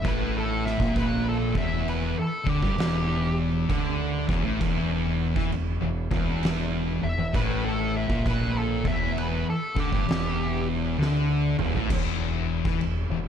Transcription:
0.02 fingered electric bass A1, distorted electric guitar A2, kick, crash
0.08 lead electric guitar B4
0.37 lead electric guitar A4
0.66 lead electric guitar E5, snare
0.78 fingered electric bass A#1, distorted electric guitar A#2, kick
0.96 lead electric guitar B4, kick, crash
1.29 lead electric guitar A4
1.54 fingered electric bass E1, distorted electric guitar E2, lead electric guitar E5, kick
1.88 lead electric guitar B4, crash
2.19 lead electric guitar A4
2.44 fingered electric bass D2, distorted electric guitar D3, kick
2.49 lead electric guitar G4
2.62 fingered electric bass G1, distorted electric guitar G2, kick
2.75 fingered electric bass E1, distorted electric guitar E2, crash
2.80 snare
3.69 fingered electric bass D2, distorted electric guitar D3, kick, crash
4.29 fingered electric bass E1, distorted electric guitar E2, kick
4.43 fingered electric bass A1, distorted electric guitar A2
4.60 fingered electric bass E1, distorted electric guitar E2, kick, crash
5.35 fingered electric bass E2, distorted electric guitar E3, kick
5.51 fingered electric bass E1, distorted electric guitar E2, crash
5.81 fingered electric bass E1, distorted electric guitar E2
6.11 fingered electric bass E1, distorted electric guitar E2, kick
6.43 snare, crash
7.02 fingered electric bass E1, distorted electric guitar E2, lead electric guitar E5
7.18 fingered electric bass E1, distorted electric guitar E2
7.33 fingered electric bass A1, distorted electric guitar A2, lead electric guitar B4, kick, crash
7.65 lead electric guitar A4
7.97 lead electric guitar E5
8.08 fingered electric bass A#1, distorted electric guitar A#2, kick
8.26 lead electric guitar B4, kick, crash
8.58 lead electric guitar A4
8.83 fingered electric bass E1, distorted electric guitar E2, kick
8.88 lead electric guitar E5
9.18 lead electric guitar B4, crash
9.50 lead electric guitar A4
9.75 fingered electric bass D2, distorted electric guitar D3, kick
9.80 lead electric guitar G4
9.91 fingered electric bass G1, distorted electric guitar G2, kick
10.07 fingered electric bass E1, distorted electric guitar E2, snare, crash
10.98 fingered electric bass D2, distorted electric guitar D3, snare
11.58 fingered electric bass E1, distorted electric guitar E2, mid tom
11.74 fingered electric bass A1, distorted electric guitar A2, floor tom
11.90 fingered electric bass E1, distorted electric guitar E2, kick, crash
12.65 fingered electric bass E2, distorted electric guitar E3, kick
12.80 fingered electric bass E1, distorted electric guitar E2, crash
13.10 fingered electric bass E1, distorted electric guitar E2

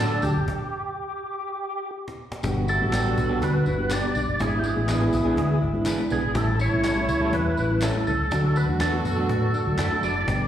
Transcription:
0.00 horn section D3 D4, clean electric guitar A3 D4 F#4 A4, tonewheel organ A4
0.22 fingered electric bass D2, reed electric piano F#3 A3 D4 F#4, tonewheel organ G4, cajon bass, tambourine
0.35 fingered electric bass F#1
0.48 cajon bass, cajon slap
2.08 cajon slap
2.32 cajon slap
2.43 fingered electric bass G1, horn section D3 F#3 B3 F#4, reed electric piano G3 B3 D4 G4, clean electric guitar G4, cajon bass, cajon slap, tambourine
2.68 clean electric guitar E4, tonewheel organ A4, cajon slap, tambourine
2.81 fingered electric bass A1, reed electric piano G3 B3 D4 G4
2.92 clean electric guitar G3 B3 D4 G4, cajon slap, clap, tambourine
3.05 reed electric piano G3 B3 D4 G4
3.17 fingered electric bass B1, cajon bass, tambourine
3.29 reed electric piano G3 B3 D4 G4, clean electric guitar G3 B3 D4 G4
3.42 fingered electric bass D2, clean electric guitar D4, tonewheel organ B4, cajon bass, cajon slap, tambourine
3.66 fingered electric bass G1, clean electric guitar E4, cajon slap, tambourine
3.78 reed electric piano G3 B3 D4 G4, cajon slap
3.91 clean electric guitar G3 B3 D4 G4, tonewheel organ D5, cajon slap, clap, tambourine
4.03 reed electric piano G3 B3 D4 G4
4.15 fingered electric bass B1, clean electric guitar D4, cajon slap, tambourine
4.28 fingered electric bass F#1
4.39 fingered electric bass G#1, horn section B2 E3 G#3 E4, reed electric piano G#3 B3 D4 E4, clean electric guitar E4, tonewheel organ G#4, cajon bass, cajon slap, tambourine
4.59 tonewheel organ G4
4.64 clean electric guitar D4, tonewheel organ G#4, cajon slap, tambourine
4.76 fingered electric bass A1, reed electric piano G#3 B3 D4 E4
4.88 clean electric guitar E3 B3 D4 G#4, cajon slap, clap, tambourine
5.00 reed electric piano G#3 B3 D4 E4
5.13 fingered electric bass B1, cajon bass, tambourine
5.25 clean electric guitar E3 B3 D4 G#4, reed electric piano G#3 B3 D4 E4
5.37 fingered electric bass D2, clean electric guitar B3, cajon bass, cajon slap
5.62 fingered electric bass G#1, clean electric guitar D4, cajon slap
5.74 reed electric piano G#3 B3 D4 E4, cajon slap
5.86 clean electric guitar E3 B3 D4 E4 G#4, cajon slap, clap, tambourine
5.98 reed electric piano G#3 B3 D4 E4
6.10 fingered electric bass B1, clean electric guitar E3 B3 D4 G#4, tonewheel organ G#4, cajon slap, tambourine
6.24 fingered electric bass G#1
6.34 fingered electric bass A1, horn section C#3 E3 A3 E4, reed electric piano G3 A3 C#4 E4, clean electric guitar G4, tonewheel organ A4, cajon bass, cajon slap, tambourine
6.59 clean electric guitar E4, tonewheel organ C#5, cajon slap, tambourine
6.72 fingered electric bass B1, reed electric piano G3 A3 C#4 E4
6.84 clean electric guitar G3 C#4 E4 A4, cajon slap, clap, tambourine
6.95 reed electric piano G3 A3 C#4 E4
7.09 fingered electric bass C#2, cajon bass, tambourine
7.21 reed electric piano G3 A3 C#4 G4, clean electric guitar G3 C#4 E4 A4
7.32 fingered electric bass E2, clean electric guitar C#4, tonewheel organ B4, cajon bass, cajon slap
7.57 fingered electric bass A1, clean electric guitar E4, cajon slap, tambourine
7.69 reed electric piano G3 A3 C#4 E4, cajon slap
7.82 clean electric guitar G3 C#4 E4 A4, tonewheel organ A4, cajon slap, clap, tambourine
7.95 reed electric piano G3 A3 C#4 E4
8.07 fingered electric bass C#2, clean electric guitar C#4, tonewheel organ A4, cajon slap, tambourine
8.19 fingered electric bass C#2
8.31 fingered electric bass D2, horn section D3 F#3 A3 F#4, reed electric piano F#3 A3 D4 F#4, clean electric guitar D4, cajon bass, cajon slap, tambourine
8.56 clean electric guitar D4, tonewheel organ B4, cajon slap, tambourine
8.68 fingered electric bass E2, reed electric piano F#3 A3 D4 F#4
8.80 clean electric guitar A3 B3 D4 F#4 A4, tonewheel organ A4, cajon slap, clap, tambourine
8.92 reed electric piano F#3 A3 D4 F#4
9.05 fingered electric bass F#2, cajon bass, tambourine
9.16 reed electric piano F#3 A3 D4 F#4, clean electric guitar A3 D4 F#4 A4
9.29 fingered electric bass A2, clean electric guitar B3, cajon bass, cajon slap
9.53 clean electric guitar D4, muted fingered electric bass stroke, cajon slap, tambourine
9.66 fingered electric bass D2, reed electric piano F#3 A3 D4 F#4, cajon slap
9.78 fingered electric bass F#2, clean electric guitar A3 D4 E4 F#4 A4, tonewheel organ A4, cajon slap, clap, tambourine
9.91 reed electric piano F#3 A3 D4 F#4, cajon slap
10.03 fingered electric bass F#1, clean electric guitar A3 D4 F#4 A4, tonewheel organ D5, cajon slap, tambourine
10.27 fingered electric bass G1, horn section D3 G3 B3 G4, reed electric piano G3 B3 D4 G4, clean electric guitar G4, cajon bass, cajon slap, tambourine

